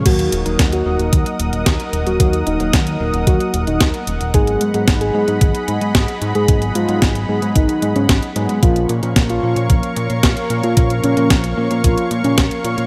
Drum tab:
CC |x---------------|----------------|----------------|----------------|
HH |xxxxxx-xxxxxxxxx|xxxxxx-xxxxxxxxx|xxxxxx-xxxxxxxxx|xxxxxx-xxxxxxxxx|
SD |----o-------o---|----o-------o---|----o-------o---|----o-------o---|
BD |o---o---o---o---|o---o---o---o---|o---o---o---o---|o---o---o---o---|

CC |----------------|----------------|
HH |xxxxxx-xxxxxxxxx|xxxxxx-xxxxxxxxx|
SD |----o-------o---|----o-------o---|
BD |o---o---o---o---|o---o---o---o---|